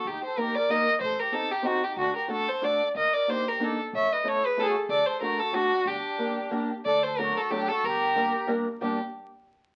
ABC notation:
X:1
M:3/4
L:1/16
Q:"Swing" 1/4=185
K:Gm
V:1 name="Violin"
G2 c2 B2 d2 e3 z | c2 B2 A2 G2 ^F2 G2 | ^F2 B2 A2 c2 d3 z | e2 d2 c2 B2 A2 z2 |
=e2 _e2 ^c2 =B2 A/2 _A/2 =A z2 | d2 c2 B2 A2 ^F4 | G8- G2 z2 | d2 c2 B2 A2 G2 A2 |
B8 z4 | G2 z8 z2 |]
V:2 name="Accordion"
E2 A2 G2 B2 B3 z | A2 G2 E2 E2 E2 E2 | D2 G2 ^F2 A2 A3 z | B2 B2 G2 G2 E2 z2 |
^c2 =B2 A2 _A2 =E ^F z2 | A2 A2 ^F2 F2 D4 | D8- D2 z2 | A2 A2 ^F2 F2 D2 F2 |
G8 z4 | D2 z8 z2 |]
V:3 name="Steel-string acoustic guitar"
z4 [B,EGB]2 z2 [B,EGB]2 z2 | z4 [CEGA]2 z2 [CEGA]2 z2 | z4 [A,D^FA]2 z2 [A,DFA]2 z2 | z4 [B,DEG]2 z2 [B,DEG]2 z2 |
z4 [A,^C=EA]2 z2 [A,CEA]2 z2 | z4 [A,D^FA]2 z2 [A,DFA]2 z2 | z4 [B,DGB]2 z2 [B,DGB]2 z2 | z4 [^F,A,D^FA]2 z2 [F,A,DFA]2 z2 |
z4 [G,B,DGB]2 z2 [G,B,DGB]2 z2 | [G,B,DG]2 z8 z2 |]
V:4 name="Upright bass" clef=bass
E,,2 z8 z2 | A,,,2 z8 z2 | D,,2 z8 z2 | E,,2 z8 z2 |
A,,,2 z8 z2 | D,,2 z8 z2 | G,,,2 z8 z2 | D,,8 z4 |
G,,,8 z4 | G,,,2 z8 z2 |]